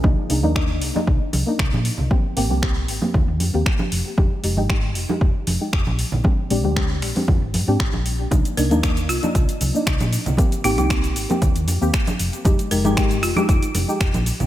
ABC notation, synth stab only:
X:1
M:4/4
L:1/16
Q:"Swing 16ths" 1/4=116
K:Fdor
V:1 name="Synth stab"
[B,DE] z [B,DE] [B,DE] [B,DE] z2 [B,DE] z3 [B,DE]4- [B,DE] | [B,CG] z [B,CG] [B,CG] [B,CG] z2 [B,CG] z3 [B,CG] z4 | [A,EG] z [A,EG] [A,EG] [A,EG] z2 [A,EG] z3 [A,EG]3 z2 | [A,CDG] z [A,CDG] [A,CDG] [A,CDG] z2 [A,CDG] z3 [A,CDG] z4 |
[B,DE] z [B,DE] [B,DE] [B,DE] z2 [B,DE] z3 [B,DE]4- [B,DE] | [B,CG] z [B,CG] [B,CG] [B,CG] z2 [B,CG] z3 [B,CG] z4 | [A,EG] z [A,EG] [A,EG] [A,EG] z2 [A,EG] z3 [A,EG]3 z2 |]